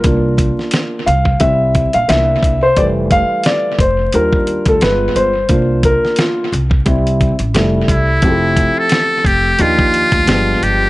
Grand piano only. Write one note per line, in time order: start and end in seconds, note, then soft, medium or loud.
0.00 0.35 A#4 medium
0.04 1.03 A#3 medium
0.04 1.03 D4 soft
0.04 1.03 F4 medium
1.06 1.38 F5 medium
1.40 1.87 G3 medium
1.40 1.88 C4 soft
1.40 1.88 E4 medium
1.40 1.96 E5 medium
1.94 2.09 F5 medium
2.08 2.56 A#3 medium
2.08 2.56 D4 soft
2.08 2.56 E4 medium
2.08 2.64 E5 loud
2.63 2.77 C5 loud
2.77 3.76 E3 medium
2.77 3.75 G3 medium
2.77 3.75 A3 soft
2.77 2.85 D5 medium
3.12 3.46 F5 loud
3.46 3.81 D5 medium
3.81 4.15 C5 medium
4.14 4.78 G3 medium
4.14 4.79 D4 soft
4.14 4.79 F4 medium
4.14 4.69 A#4 medium
4.68 4.83 A4 medium
4.81 5.29 G#3 medium
4.81 5.29 B3 medium
4.81 5.29 F4 medium
4.81 5.17 B4 medium
5.16 5.86 C5 medium
5.49 6.48 A#3 medium
5.49 6.48 D4 soft
5.49 6.18 F4 medium
5.85 6.19 A#4 medium
6.20 6.50 F4 medium
6.85 7.33 G3 medium
6.85 7.33 C4 medium
6.85 7.34 E4 medium
7.55 8.19 G3 medium
7.55 8.19 A3 medium
7.55 8.20 E4 medium
8.22 9.56 F3 medium
8.22 8.30 G#3 soft
8.22 9.57 C4 medium
8.22 9.57 E4 medium
8.22 9.57 G4 medium
8.29 9.60 A3 medium
9.59 10.25 F3 medium
9.59 10.27 A#3 medium
9.59 10.26 D4 medium
9.59 10.27 D#4 medium
9.59 10.26 G4 medium
10.27 10.90 F3 medium
10.27 10.90 G#3 medium
10.27 10.90 B3 medium
10.27 10.90 D4 medium
10.27 10.90 G4 medium